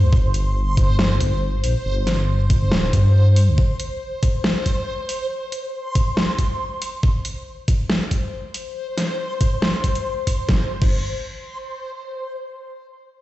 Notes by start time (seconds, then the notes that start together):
Already playing: C5
0.03 D2
0.13 G1, kick
0.34 closed hi-hat
0.77 kick, closed hi-hat
0.89 G1
0.99 snare
1.21 G1, kick, closed hi-hat
1.64 A#1, open hi-hat
1.85 G1
2.07 snare, closed hi-hat
2.50 kick, closed hi-hat
2.62 G1
2.72 D1, snare
2.93 G2, kick, closed hi-hat
3.36 open hi-hat
3.48 D2
3.58 kick
3.80 closed hi-hat
4.23 kick, closed hi-hat
4.44 snare
4.66 kick, closed hi-hat
5.09 open hi-hat
5.52 closed hi-hat
5.95 kick, closed hi-hat
6.17 snare
6.39 kick, closed hi-hat
6.82 open hi-hat
7.03 kick
7.25 closed hi-hat
7.68 kick, closed hi-hat
7.90 snare
8.11 kick, closed hi-hat
8.54 open hi-hat
8.98 snare, closed hi-hat
9.41 kick, closed hi-hat
9.62 snare
9.84 kick, closed hi-hat
9.95 closed hi-hat
10.27 kick, open hi-hat
10.49 G1, kick, snare
10.82 G1, kick, crash